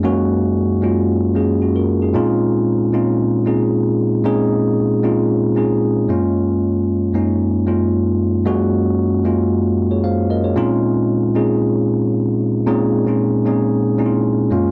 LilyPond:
\new Staff \with { instrumentName = "Tine electric piano" } { \time 4/4 \key bes \minor \tempo 4 = 114 << { r2. <des' ges'>16 <f' bes'>8 <ees' aes'>16~ | <ees' aes'>16 r2. r8. | r1 | r1 |
r2 r8. <aes' des''>16 <c'' f''>8 <bes' ees''>16 <aes' des''>16~ | <aes' des''>16 r2. r8. | r1 | } \\ { <ges, aes bes des' ges'>4~ <ges, aes bes des' ges'>16 r16 <ges, aes bes des' f'>8. r16 <ges, aes bes des' aes'>8. r8. | <bes, aes c' des' ees' f'>4~ <bes, aes c' des' ees' f'>16 r16 <bes, aes c' des' ees' f'>8. r16 <bes, aes c' des' ees' aes'>4~ <bes, aes c' des' ees' aes'>16 r16 | <bes, aes c' des' ees' aes'>4~ <bes, aes c' des' ees' aes'>16 r16 <bes, aes c' des' ees' f'>8. r16 <bes, aes c' des' ees' aes'>8. r16 <ges, aes bes des' f'>8~ | <ges, aes bes des' f'>4 r8 <ges, aes bes des' ees'>8. r16 <ges, aes bes des' f'>4~ <ges, aes bes des' f'>16 r16 |
<ges, aes bes des' ges'>4~ <ges, aes bes des' ges'>16 r16 <ges, aes bes des' f'>8. r4. r16 | <bes, aes c' des' ees' f'>4~ <bes, aes c' des' ees' f'>16 r16 <bes, aes c' des' ees' aes'>4. r4 | <bes, aes c' des' ees' aes'>8 r16 <bes, aes c' des' ees' f'>8 r16 <bes, aes c' des' ees' aes'>8. r16 <bes, aes c' des' ees' e' f'>8. r16 <ges, aes bes des' f'>8 | } >> }